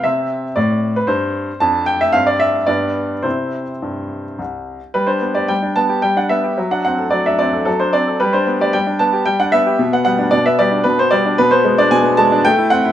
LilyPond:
<<
  \new Staff \with { instrumentName = "Grand piano" } { \time 3/4 \key c \major \tempo 4 = 112 << { e''4 d''8. b'16 c''4 | a''8 g''16 e''16 f''16 d''16 e''8 d''4 | c''2 r4 | \key g \major b'16 c''8 d''16 g''8 a''8 g''16 fis''16 e''8~ |
e''16 fis''16 fis''8 d''16 e''16 d''8 a'16 c''16 d''8 | b'16 c''8 d''16 g''8 a''8 g''16 fis''16 e''8~ | e''16 fis''16 fis''8 d''16 e''16 d''8 b'16 c''16 d''8 | b'16 c''8 d''16 gis''8 a''8 g''8 fis''8 | } \\ { c'2. | d'4 c'4 b4 | r2. | r2. |
r2. | r2. | r2. | r2. | } >> }
  \new Staff \with { instrumentName = "Grand piano" } { \time 3/4 \key c \major c4 a,4 g,4 | f,4 g,4 g,4 | <c c' e'>4 g,4 c,4 | \key g \major g16 d'16 b16 g'16 g16 d'16 b16 g'16 g16 d'16 b16 g'16 |
fis16 d'16 c'16 a'16 fis16 d'16 c'16 a'16 fis16 d'16 c'16 a'16 | g16 d'16 b16 g'16 g16 d'16 b16 g'16 g16 d'16 b16 g'16 | b,16 b16 g16 d'16 b,16 b16 g16 d'16 b,16 b16 g16 d'16 | b,16 b16 gis16 d'16 b,16 b16 gis16 d'16 a16 e'16 c'16 e'16 | }
>>